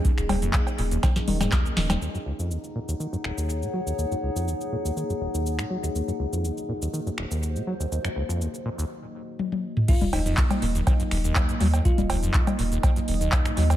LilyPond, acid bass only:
\new Staff \with { instrumentName = "Acid bass" } { \clef bass \time 4/4 \key c \phrygian \tempo 4 = 122 ees,16 ges,16 des,16 f,16 ees,16 r16 bes,16 ees,16 ees16 ges,16 ees16 aes,16 ees,16 des,16 ees16 ees,16 | ees,16 ges,16 des,16 f,16 ees,16 r16 bes,16 ees,16 ees16 ges,16 ees,,16 ees,8 bes,16 ges16 ees,16 | ees,16 ges,16 des,16 f,16 ees,16 r16 bes,16 ees,16 ees16 ges,16 ees,,16 ees,8 bes,16 ges16 ees,16 | ees,16 ges,16 des,16 f,16 ees,16 r16 bes,16 ees,16 ees16 ges,16 ees,,16 ees,8 bes,16 ges16 ees,16 |
ees,16 ges,16 des,16 f,16 ees,16 r16 bes,16 ees,16 r2 | ees,16 ges,16 des,16 f,16 ees,16 r16 bes,16 ees,16 ees16 ges,16 ees,,16 ees,8 bes,16 ges16 ees,16 | ees,16 ges,16 des,16 f,16 ees,16 r16 bes,16 ees,16 ees16 ges,16 ees,,16 ees,8 bes,16 ges16 ees,16 | }